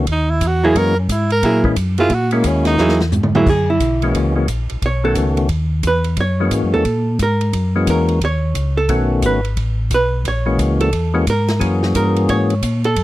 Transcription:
0.07 tonewheel organ D#2, kick, ride
0.12 tenor saxophone D#4
0.30 tenor saxophone E4
0.41 tonewheel organ E2, kick, hi-hat pedal, ride
0.47 tenor saxophone F#4
0.64 hollow-body jazz guitar F#3 A#3 E4 G#4, tenor saxophone G#4
0.75 tonewheel organ F#2 E3 G#3 A#3 C#4 F#4, tenor saxophone A#4, kick, ride
0.99 tenor saxophone C#4
1.09 tonewheel organ G#2, tenor saxophone E4, kick, hi-hat pedal, ride
1.30 tenor saxophone A#4, ride
1.43 tonewheel organ A#2, hollow-body jazz guitar F#3 A#3 E4 G#4, kick, ride
1.64 tonewheel organ E3 G#3 A#3 C#4 E4, kick
1.76 tonewheel organ F#2, kick, hi-hat pedal, ride
1.98 hollow-body jazz guitar F#3 A#3 E4 G#4, tenor saxophone F4, ride
2.09 tonewheel organ A#2, kick, ride
2.14 tenor saxophone F#4
2.31 tonewheel organ G#3 A#3 C#4 E4 F#4, tenor saxophone A#3, ride
2.44 tonewheel organ D#2, tenor saxophone C#4, kick, hi-hat pedal, ride
2.65 tenor saxophone D#4, snare, ride
2.78 tonewheel organ E2, hollow-body jazz guitar F#3 A#3 E4 G#4, snare
2.89 snare
3.00 snare
3.12 tonewheel organ G#2, floor tom, hi-hat pedal
3.23 mid tom
3.35 hollow-body jazz guitar F#3 A#3 E4 G#4, mid tom
3.46 tonewheel organ F#2, hollow-body jazz guitar G#4, kick, crash
3.70 hollow-body jazz guitar E4
3.80 tonewheel organ B1, kick, hi-hat pedal, ride
4.02 tonewheel organ E3 G#3 A#3 C#4 F#4, ride
4.14 tonewheel organ C#2, kick, ride
4.35 tonewheel organ E3 G#3 A#3 C#4 F#4
4.48 tonewheel organ A#1, kick, hi-hat pedal, ride
4.69 tonewheel organ A#1, ride
4.82 tonewheel organ B1, hollow-body jazz guitar C#5, kick, ride
5.04 tonewheel organ D#3 A3 B3 C#4 F#4, hollow-body jazz guitar A4
5.15 tonewheel organ C#2, kick, hi-hat pedal, ride
5.37 ride
5.49 tonewheel organ D#2, kick, ride
5.83 tonewheel organ E2, kick, hi-hat pedal, ride
5.87 hollow-body jazz guitar B4
6.04 ride
6.17 tonewheel organ F#2, hollow-body jazz guitar C#5, kick, ride
6.40 tonewheel organ E3 G#3 A#3 C#4 F#4
6.51 tonewheel organ G#2, kick, hi-hat pedal, ride
6.63 tonewheel organ F#2
6.74 tonewheel organ E2, hollow-body jazz guitar A4
6.85 tonewheel organ A#2, kick, ride
7.19 tonewheel organ G#2, hollow-body jazz guitar A#4, kick, hi-hat pedal, ride
7.41 ride
7.53 tonewheel organ F#2, kick, ride
7.76 tonewheel organ E3 G#3 A#3 C#4 F#4
7.87 tonewheel organ E2, hollow-body jazz guitar A#4, kick, hi-hat pedal, ride
8.08 ride
8.21 tonewheel organ D#2, hollow-body jazz guitar C#5, kick, ride
8.55 tonewheel organ C#2, kick, hi-hat pedal, ride
8.77 hollow-body jazz guitar A4
8.88 tonewheel organ B1 D#3 A3 B3 C#4 F#4, kick, ride
9.22 tonewheel organ G#1, hollow-body jazz guitar B4, kick, hi-hat pedal, ride
9.45 ride
9.57 tonewheel organ A1, kick, ride
9.90 tonewheel organ B1, kick, hi-hat pedal, ride
9.94 hollow-body jazz guitar B4
10.25 tonewheel organ A#1, hollow-body jazz guitar C#5, kick, ride
10.46 tonewheel organ E3 G#3 A#3 C#4 F#4
10.58 tonewheel organ C#2, kick, hi-hat pedal, ride
10.80 hollow-body jazz guitar A4, ride
10.92 tonewheel organ E2, kick, ride
11.14 tonewheel organ E3 G#3 A#3 C#4 F#4
11.27 tonewheel organ G#2, hollow-body jazz guitar A#4, kick, hi-hat pedal, ride
11.48 snare, ride
11.59 tonewheel organ F#2 E3 A#3 C#4 F#4 G#4, kick, ride
11.83 snare
11.95 tonewheel organ G2, hollow-body jazz guitar A#4, kick, hi-hat pedal, ride
12.16 ride
12.29 tonewheel organ G#2, hollow-body jazz guitar C#5, kick, ride
12.50 ride
12.63 tonewheel organ A#2, kick, hi-hat pedal, ride
12.84 hollow-body jazz guitar A4, ride
12.96 tonewheel organ F#2, kick, ride

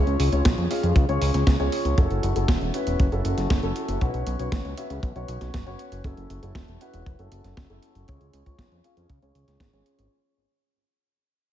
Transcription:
Already playing: grand piano C#4 F4 G#4 C#5
0.07 analog synth bass C#2, closed hi-hat
0.20 analog synth bass C#2, open hi-hat
0.32 analog synth bass C#2, grand piano C#4 F4 G#4 C#5, closed hi-hat
0.45 analog synth bass B1, kick, snare, closed hi-hat
0.58 analog synth bass F2, closed hi-hat
0.71 grand piano C#4 F4 G#4 F5, open hi-hat
0.83 analog synth bass F2, closed hi-hat
0.96 analog synth bass C#2, kick, closed hi-hat
1.09 analog synth bass C#2, grand piano C#4 F4 G#4 C#5, closed hi-hat
1.22 analog synth bass C#2, open hi-hat
1.34 analog synth bass C#2, snare, closed hi-hat
1.47 analog synth bass C#2, kick, snare, closed hi-hat
1.60 analog synth bass C#2, grand piano C#4 F4 G#4 C#5, closed hi-hat
1.72 open hi-hat
1.85 analog synth bass C#2, closed hi-hat
1.98 analog synth bass F#1, grand piano C#4 E4 F#4 A4, kick, closed hi-hat
2.10 analog synth bass F#1, closed hi-hat
2.23 analog synth bass F#1, closed hi-hat
2.36 analog synth bass F#1, grand piano C#4 E4 F#4 A4, closed hi-hat
2.48 analog synth bass E1, kick, snare, closed hi-hat
2.61 analog synth bass E1, closed hi-hat
2.74 grand piano C#4 E4 F#4 B4, closed hi-hat
2.87 analog synth bass E1, closed hi-hat
2.99 analog synth bass F#1, kick, closed hi-hat
3.12 analog synth bass F#1, grand piano C#4 E4 F#4 A4, closed hi-hat
3.25 analog synth bass F#1, closed hi-hat
3.38 analog synth bass F#1, snare, closed hi-hat
3.50 analog synth bass F#1, kick, snare, closed hi-hat
3.63 analog synth bass F#1, grand piano C#4 E4 F#4 A4, closed hi-hat
3.76 closed hi-hat
3.88 analog synth bass F#1, closed hi-hat
4.01 analog synth bass B1, grand piano C#4 F#4 B4 C#5, kick, closed hi-hat
4.14 analog synth bass B1, closed hi-hat
4.27 analog synth bass B1, closed hi-hat
4.39 analog synth bass B1, grand piano C#4 F#4 B4 C#5, closed hi-hat
4.52 analog synth bass A1, kick, snare, closed hi-hat
4.65 analog synth bass C#2, closed hi-hat
4.77 grand piano C#4 F#4 B4 E5, closed hi-hat
4.90 analog synth bass C#2, closed hi-hat
5.03 analog synth bass B1, kick, closed hi-hat
5.16 analog synth bass B1, grand piano C#4 F#4 B4 C#5, closed hi-hat
5.28 analog synth bass B1, closed hi-hat
5.41 analog synth bass B1, snare, closed hi-hat
5.54 analog synth bass F#1, kick, snare, closed hi-hat
5.66 analog synth bass F#1, grand piano C#4 F#4 B4 C#5, closed hi-hat
5.79 closed hi-hat
5.92 analog synth bass F#1, closed hi-hat
6.04 analog synth bass F#1, grand piano C#4 E4 F#4 A4, kick, closed hi-hat
6.17 analog synth bass F#1, closed hi-hat
6.30 analog synth bass F#1, closed hi-hat
6.43 analog synth bass F#1, grand piano C#4 E4 F#4 A4, closed hi-hat
6.55 analog synth bass E1, kick, snare, closed hi-hat
6.68 analog synth bass E1, closed hi-hat
6.81 grand piano C#4 E4 F#4 B4, closed hi-hat
6.94 analog synth bass E1, closed hi-hat
7.06 analog synth bass F#1, kick, closed hi-hat
7.19 analog synth bass F#1, grand piano C#4 E4 F#4 A4, closed hi-hat
7.32 analog synth bass F#1, closed hi-hat
7.44 analog synth bass F#1, snare, closed hi-hat
7.57 analog synth bass F#1, kick, snare, closed hi-hat
7.70 analog synth bass F#1, grand piano C#4 E4 F#4 A4, closed hi-hat
7.83 closed hi-hat
7.95 analog synth bass F#1, closed hi-hat
8.08 analog synth bass C#2, grand piano C#4 F4 G#4 C#5, kick, closed hi-hat
8.21 analog synth bass C#2, closed hi-hat
8.33 analog synth bass C#2, closed hi-hat
8.46 analog synth bass C#2, grand piano C#4 F4 G#4 C#5, kick, closed hi-hat
8.59 analog synth bass B1, kick, snare, closed hi-hat
8.72 analog synth bass F2, closed hi-hat
8.84 grand piano C#4 F4 G#4 F5, closed hi-hat
8.97 analog synth bass F2, closed hi-hat
9.10 analog synth bass C#2, kick, closed hi-hat
9.22 analog synth bass C#2, grand piano C#4 F4 G#4 C#5, closed hi-hat
9.35 analog synth bass C#2, closed hi-hat
9.48 analog synth bass C#2, snare, closed hi-hat
9.60 analog synth bass G#1, kick, snare, closed hi-hat
9.73 analog synth bass G#1, grand piano C#4 F4 G#4 C#5, closed hi-hat
9.86 closed hi-hat
9.99 analog synth bass G#1, closed hi-hat

